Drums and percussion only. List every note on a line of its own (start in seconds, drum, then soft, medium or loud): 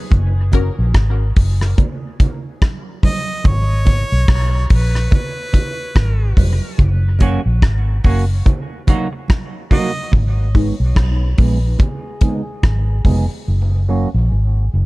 0.11 kick loud
0.11 hi-hat pedal medium
0.11 low conga medium
0.52 kick medium
0.52 closed hi-hat medium
0.52 low conga medium
0.94 kick loud
0.94 cross-stick loud
1.36 kick loud
1.36 open hi-hat medium
1.61 cross-stick medium
1.78 kick loud
1.78 hi-hat pedal medium
1.78 low conga medium
2.20 kick loud
2.20 closed hi-hat medium
2.20 low conga medium
2.62 kick loud
2.62 cross-stick loud
2.62 high conga soft
3.03 kick medium
3.03 open hi-hat medium
3.03 high conga medium
3.03 low conga medium
3.44 kick loud
3.44 hi-hat pedal medium
3.44 low conga medium
3.86 kick medium
3.86 closed hi-hat medium
3.86 low conga medium
4.28 kick loud
4.28 cross-stick loud
4.70 kick loud
4.70 open hi-hat medium
4.95 cross-stick medium
5.11 kick loud
5.11 hi-hat pedal medium
5.11 low conga medium
5.53 kick medium
5.53 closed hi-hat medium
5.53 low conga medium
5.95 kick loud
5.95 cross-stick loud
5.95 high conga soft
6.37 kick loud
6.37 open hi-hat medium
6.37 high conga medium
6.37 low conga medium
6.78 kick loud
6.78 hi-hat pedal medium
6.78 low conga medium
7.19 kick medium
7.19 closed hi-hat medium
7.19 low conga medium
7.62 kick loud
7.62 cross-stick loud
8.04 kick loud
8.04 open hi-hat medium
8.46 kick loud
8.46 hi-hat pedal medium
8.46 low conga medium
8.87 kick medium
8.87 closed hi-hat medium
8.87 low conga medium
9.28 kick loud
9.28 cross-stick loud
9.28 high conga soft
9.71 kick medium
9.71 open hi-hat medium
9.71 high conga medium
9.71 low conga medium
10.12 kick loud
10.12 low conga medium
10.55 kick medium
10.55 open hi-hat soft
10.95 kick loud
10.95 cross-stick loud
10.95 hi-hat pedal medium
10.95 high conga soft
11.38 kick loud
11.38 open hi-hat medium
11.79 kick loud
11.79 hi-hat pedal medium
11.79 low conga medium
12.21 kick loud
12.21 closed hi-hat medium
12.21 low conga medium
12.63 kick loud
12.63 cross-stick loud
12.63 high conga soft
13.05 kick loud
13.05 open hi-hat medium
13.05 low conga medium